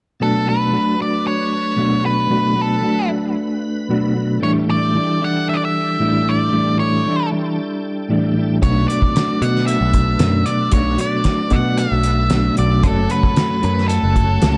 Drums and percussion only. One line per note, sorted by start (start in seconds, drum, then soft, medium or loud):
8.63 kick loud
8.63 closed hi-hat medium
8.90 closed hi-hat medium
9.02 kick medium
9.16 snare medium
9.16 closed hi-hat medium
9.42 closed hi-hat soft
9.56 snare soft
9.68 closed hi-hat medium
9.93 kick medium
9.93 closed hi-hat medium
10.19 snare medium
10.19 closed hi-hat medium
10.46 closed hi-hat medium
10.72 kick loud
10.72 closed hi-hat medium
10.98 closed hi-hat medium
11.24 kick medium
11.24 snare medium
11.24 closed hi-hat medium
11.50 kick medium
11.50 closed hi-hat soft
11.78 closed hi-hat medium
12.03 closed hi-hat medium
12.30 snare medium
12.30 closed hi-hat medium
12.57 closed hi-hat medium
12.83 kick loud
12.83 closed hi-hat medium
13.10 closed hi-hat medium
13.23 kick medium
13.36 snare loud
13.36 closed hi-hat medium
13.63 closed hi-hat soft
13.78 snare soft
13.89 closed hi-hat medium
14.16 kick medium
14.16 closed hi-hat medium
14.42 snare loud
14.42 closed hi-hat medium